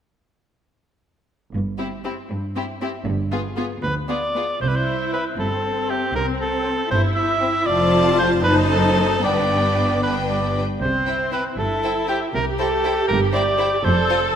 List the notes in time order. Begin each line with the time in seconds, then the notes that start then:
1.53 G1 G2
1.78 C4 E4 G4
2.04 C4 E4 G4
2.30 G2
2.56 C4 E4 G4
2.81 C4 E4 G4
3.06 G1 G2
3.31 B3 F4 G#4
3.57 B3 F4 G#4
3.83 D2 B4
4.08 B3 F4 G#4 D5
4.35 B3 F4 G#4
4.61 C2 C3 E4 C5
4.68 B4
4.76 C5
5.13 C4 B4 C5 E5
5.39 G1 G2 C4 A4
5.89 C4 G4 C5 E5
6.15 C2 C3 A#4
6.41 A4
6.64 C4 C5 G5
6.91 G1 G2 E4 C5
7.15 E5
7.41 C4 C5 G5
7.66 F1 F2 C4 F4 C5 D5 A5
8.18 C5
8.44 F#1 F#2 D#4 B4 C5 A5
8.71 A4
9.23 G1 G2 B3 D4 B4 D5 G5
10.03 D4 B4 G5
10.29 D5
10.81 C2 C3 C4 C5
11.06 E4 C5 G5
11.31 E4 B4 C5 G5
11.58 G1 G2 E4 A4
11.83 E4 C5 G5
12.08 E4 G4 C5 G5
12.34 C2 C3 G4 A#4
12.58 E4 A4 C5 G5
12.83 E4 C5 G5
13.08 G1 G2 A#4
13.33 E4 C5 D5 G5
13.58 E4 C5 G5
13.84 F1 F2 A4 C5
14.09 F4 C5 A5